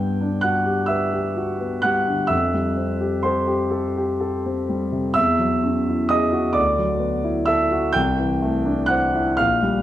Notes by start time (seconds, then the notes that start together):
Already playing: G2 G3 B3 G5 G6
0.21 D4
0.41 F#4 F#5 F#6
0.66 G4
0.86 B4 E5 E6
1.13 G4
1.37 F#4
1.60 B3
1.82 G3 F#5 F#6
2.07 D3
2.27 F2 E5 E6
2.54 G3
2.76 C4
3.01 G4
3.23 A4 C5 C6
3.47 G4
3.71 A4
3.97 G4
4.20 A4
4.46 C4
4.69 G3
4.92 C3
5.14 E2 E5 E6
5.39 F#3
5.63 C#4
5.89 E4
6.09 G#4 D#5 D#6
6.32 F#4
6.53 D2 D5 D6
6.79 F#3
6.99 B3
7.24 E4
7.46 A4 E5 E6
7.71 F#4
7.93 C2 G5 G6
8.19 E3
8.42 A3
8.65 D4
8.86 C5 F#5 F#6
9.15 E4
9.37 A#1 F5 F6
9.62 G3